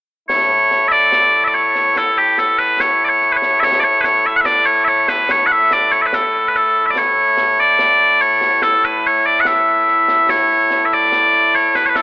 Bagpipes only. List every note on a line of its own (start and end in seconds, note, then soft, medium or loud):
0.29 12.02 A2 medium
0.29 12.02 A3 medium
0.29 12.02 E4 medium
0.29 0.88 C#5 loud
0.88 1.44 D5 loud
0.88 0.92 E5 loud
1.44 1.54 D5 medium
1.44 1.47 E5 medium
1.54 1.97 C#5 loud
1.97 2.18 A4 medium
2.18 2.39 G4 medium
2.39 2.58 A4 medium
2.58 2.80 B4 medium
2.80 3.05 C#5 medium
3.05 3.09 D5 medium
3.09 3.32 C#5 medium
3.32 3.36 B4 medium
3.36 3.60 C#5 medium
3.60 3.80 C#5 loud
3.60 3.64 E5 loud
3.80 4.01 C#5 loud
3.80 3.84 D5 medium
4.01 4.04 B4 medium
4.01 4.26 C#5 loud
4.26 4.36 E5 loud
4.36 4.41 F#5 medium
4.41 4.45 E5 medium
4.45 4.66 D5 medium
4.66 4.84 C#5 loud
4.84 5.09 C#5 medium
4.84 4.88 E5 medium
5.09 5.31 B4 medium
5.31 5.46 C#5 loud
5.46 5.52 F#5 medium
5.52 5.72 E5 loud
5.72 5.92 D5 medium
5.92 6.02 C#5 medium
6.02 6.06 E5 medium
6.06 6.14 B4 medium
6.14 6.48 A4 medium
6.48 6.56 B4 medium
6.56 6.86 A4 medium
6.86 6.90 E5 medium
6.90 6.98 D5 medium
6.98 7.60 C#5 loud
7.60 8.21 D5 loud
8.21 8.62 C#5 medium
8.62 8.85 A4 medium
8.85 9.06 B4 medium
9.06 9.26 C#5 medium
9.26 9.40 D5 medium
9.40 9.47 F#5 medium
9.47 10.30 E5 medium
10.30 10.85 C#5 loud
10.85 10.93 E5 medium
10.93 11.55 D5 loud
11.55 11.75 C#5 medium
11.75 11.85 B4 medium
11.86 11.96 B4 medium
11.86 11.89 C#5 medium
11.96 12.02 A4 medium